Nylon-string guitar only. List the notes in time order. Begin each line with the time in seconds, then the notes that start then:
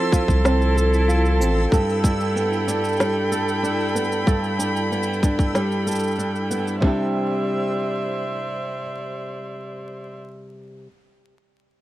Already playing: F3 C4 F4 A4
0.13 F4
0.44 C4
0.76 A4
1.08 F4
1.40 C4
1.72 G2 A4
2.03 D4
2.36 B3
2.68 D4
2.99 G3
3.32 A4
3.63 D4
3.95 B3
4.27 G2 A4
4.59 D4
4.91 B3
5.23 D4
5.54 G3
5.87 A4
6.18 D4
6.51 B3
6.80 C3 G3 D4
6.86 E4 G4